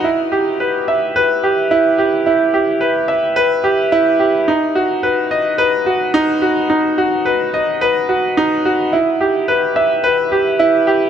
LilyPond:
\new Staff \with { instrumentName = "Grand piano" } { \time 4/4 \key b \phrygian \tempo 4 = 108 e'8 g'8 b'8 e''8 b'8 g'8 e'8 g'8 | e'8 g'8 b'8 e''8 b'8 g'8 e'8 g'8 | dis'8 fis'8 b'8 dis''8 b'8 fis'8 dis'8 fis'8 | dis'8 fis'8 b'8 dis''8 b'8 fis'8 dis'8 fis'8 |
e'8 g'8 b'8 e''8 b'8 g'8 e'8 g'8 | }